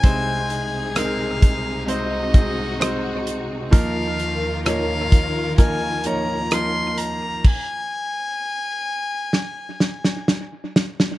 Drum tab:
CC |----------------|----------------|x---------------|
HH |x-x-x-x-x-x-x-x-|x-x-x-x-x-x-x-x-|----------------|
SD |----r-------r---|----r-------r---|--------o-ooo-oo|
BD |o-----o---o-----|o-----o-o-------|o---------------|